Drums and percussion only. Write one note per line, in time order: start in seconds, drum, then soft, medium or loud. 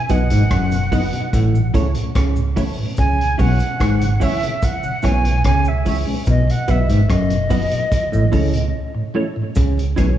0.09 kick medium
0.09 closed hi-hat medium
0.09 cabasa soft
0.30 closed hi-hat medium
0.30 cabasa medium
0.51 kick loud
0.51 cross-stick loud
0.51 closed hi-hat medium
0.71 closed hi-hat medium
0.71 cabasa medium
0.92 kick loud
0.92 open hi-hat medium
0.92 cabasa medium
1.13 closed hi-hat medium
1.33 kick loud
1.33 closed hi-hat medium
1.33 cabasa medium
1.55 cabasa medium
1.74 kick medium
1.74 closed hi-hat medium
1.74 cabasa soft
1.95 closed hi-hat soft
2.15 kick loud
2.15 cross-stick loud
2.15 closed hi-hat medium
2.36 cabasa medium
2.56 kick medium
2.56 open hi-hat medium
2.56 cabasa medium
2.97 kick loud
2.97 closed hi-hat medium
2.97 cabasa medium
3.21 closed hi-hat soft
3.39 kick medium
3.39 open hi-hat soft
3.39 cabasa soft
3.60 closed hi-hat medium
3.60 cabasa medium
3.80 kick loud
3.80 cross-stick loud
3.80 closed hi-hat medium
4.01 closed hi-hat medium
4.01 cabasa medium
4.21 kick loud
4.21 open hi-hat medium
4.21 cabasa medium
4.43 closed hi-hat medium
4.62 kick loud
4.62 closed hi-hat medium
4.62 cabasa medium
4.83 cabasa medium
5.02 kick medium
5.02 cross-stick medium
5.02 closed hi-hat medium
5.02 cabasa soft
5.25 closed hi-hat medium
5.44 kick loud
5.44 cross-stick loud
5.44 closed hi-hat medium
5.65 cabasa medium
5.86 kick medium
5.86 open hi-hat medium
5.86 cabasa medium
6.26 kick loud
6.26 closed hi-hat medium
6.26 cabasa medium
6.50 closed hi-hat soft
6.68 kick medium
6.68 closed hi-hat medium
6.68 cabasa soft
6.89 closed hi-hat medium
6.89 cabasa medium
7.10 kick loud
7.10 cross-stick loud
7.10 closed hi-hat medium
7.30 closed hi-hat medium
7.30 cabasa medium
7.50 kick loud
7.50 open hi-hat medium
7.50 cabasa medium
7.71 closed hi-hat medium
7.92 kick loud
7.92 closed hi-hat medium
7.92 cabasa medium
8.13 cabasa medium
8.32 kick medium
8.32 open hi-hat soft
8.32 cabasa soft
8.54 closed hi-hat medium
9.55 kick loud
9.55 closed hi-hat medium
9.55 cabasa medium
9.79 closed hi-hat soft
9.97 kick medium
9.97 closed hi-hat medium
9.97 cabasa soft